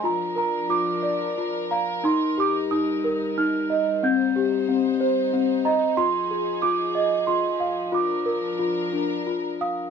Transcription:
0.03 2.03 F3 medium
0.03 2.03 D4 medium
0.03 0.68 F4 medium
0.03 4.00 A#4 medium
0.03 0.37 A#5 medium
0.36 1.71 A#4 medium
0.36 0.71 A#5 medium
0.69 1.36 F4 medium
0.69 1.67 D6 medium
1.03 2.04 D5 medium
1.38 2.05 F4 medium
1.71 2.05 F5 medium
1.71 2.05 A#5 medium
2.04 5.94 G3 medium
2.04 2.70 D#4 medium
2.04 4.02 D#4 medium
2.04 2.39 C6 medium
2.38 3.71 G4 medium
2.38 2.54 D6 medium
2.71 3.36 D#4 medium
2.71 3.40 D#6 medium
3.04 4.04 A#4 medium
3.38 4.04 D#4 medium
3.38 4.06 F6 medium
3.70 4.03 D#5 medium
4.03 4.68 C4 medium
4.03 7.89 D#4 medium
4.03 5.96 C5 medium
4.03 4.97 G6 medium
4.36 5.66 G4 medium
4.69 5.32 C4 medium
5.00 5.98 C5 medium
5.33 5.98 C4 medium
5.65 5.98 D#5 medium
5.65 5.99 A#5 medium
5.97 9.90 F3 medium
5.97 6.62 F4 medium
5.97 7.90 G#4 medium
5.97 6.64 C6 loud
6.31 7.60 G#4 medium
6.62 7.27 F4 medium
6.62 7.29 D6 medium
6.95 7.92 D#5 medium
7.27 7.91 F4 medium
7.27 7.94 C6 medium
7.60 7.93 F5 medium
7.92 9.90 D4 medium
7.92 8.58 F4 medium
7.92 9.90 A#4 medium
7.92 9.23 D6 medium
8.26 9.61 A#4 medium
8.59 9.26 F4 medium
8.93 9.90 D4 medium
9.27 9.90 F4 medium
9.61 9.90 F5 medium
9.61 9.90 D#6 medium

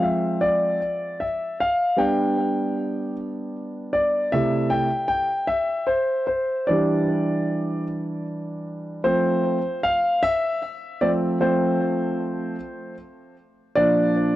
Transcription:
0.00 0.76 F3 soft
0.00 0.76 G#3 soft
0.00 0.77 C4 medium
0.00 0.43 E5 medium
0.41 1.22 D5 medium
1.20 1.57 E5 medium
1.60 2.00 F5 medium
1.96 4.29 G3 soft
1.96 4.30 B3 soft
1.96 4.30 D4 soft
1.96 3.12 G5 medium
3.93 4.35 D5 medium
4.32 4.86 C3 soft
4.32 4.87 A3 soft
4.32 4.87 E4 medium
4.32 4.74 E5 medium
4.70 5.07 G5 medium
5.08 5.47 G5 medium
5.47 5.91 E5 medium
5.87 6.26 C5 medium
6.27 6.70 C5 medium
6.67 9.01 E3 medium
6.67 9.02 G3 soft
6.67 9.02 D4 medium
6.67 7.83 D5 medium
9.04 9.57 F3 medium
9.04 9.57 A3 soft
9.04 9.58 C4 medium
9.04 9.79 C5 medium
9.83 10.20 F5 medium
10.23 11.04 E5 loud
11.01 11.37 F3 soft
11.01 11.37 A3 soft
11.01 11.37 C4 medium
11.01 11.10 D5 medium
11.40 12.54 F3 medium
11.40 12.55 A3 medium
11.40 12.55 C4 medium
11.40 12.94 C5 medium
13.75 14.36 A#2 medium
13.75 14.36 F3 medium
13.75 14.36 D4 medium
13.75 14.36 D5 loud

